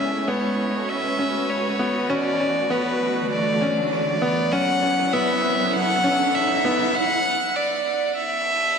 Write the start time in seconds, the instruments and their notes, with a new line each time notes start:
Already playing: cello section A2, string section G#3 B3 E4 G#4, grand piano C#4, violin E5, riser
0.00 string section C#4
0.28 grand piano B3, violin C#5
0.58 cello section A2
0.76 string section F#4 B4
0.89 violin E5
1.19 grand piano C#4
1.49 cello section A2, violin C#5
1.79 grand piano B3
2.10 cello section B2, string section E3, grand piano C#4, violin D5
2.40 grand piano C#4
2.52 string section A3
2.70 cello section A2, grand piano B3, violin B4
3.01 cello section B2
3.19 string section D3
3.31 violin D5
3.61 grand piano C#4
3.91 violin D5
4.22 cello section F#2, grand piano B3
4.52 string section F#3, grand piano C#4, violin F#5
4.80 string section B3, grand piano C#4
4.92 string section E4
5.13 cello section E2, grand piano B3, violin E5
5.43 cello section F#2
5.62 string section A4
5.73 violin F#5
6.04 grand piano C#4
6.34 violin E5
6.65 cello section E2, grand piano B3
6.95 violin F#5
7.56 violin D5
8.16 violin E5, reverse cymbal